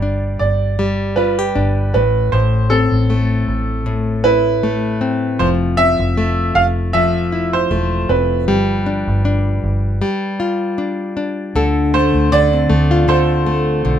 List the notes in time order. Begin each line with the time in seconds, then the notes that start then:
Already playing: G1 G3 G4 B4 D5
0.02 D4
0.39 G1 D5
0.79 G3
1.16 F4 B4
1.39 G4
1.55 G1 D4
1.94 A1 A2 B4
2.32 A1 A2 C5
2.70 C4 A4
2.92 A1
3.10 A3
3.48 A1
3.86 A2
4.24 E4 B4
4.63 A3
5.01 C4
5.39 F1 F3 C5
5.77 C4 E5
5.99 F1
6.17 A3
6.55 F1 F5
6.93 F3 E5
7.32 E4
7.53 C5
7.71 E1 A3
8.09 F1 C4 B4
8.48 G1 G3
8.86 D4
9.08 G1
9.25 D4
9.63 G1
10.02 G3
10.40 F4
10.78 D4
11.17 D4
11.55 D2 D3 A4
11.94 A3 C5
12.15 D2
12.32 D3 D5
12.53 C4
12.70 D2 A3
12.91 F4
13.08 D3 A4 C5
13.46 A3
13.85 B1 D3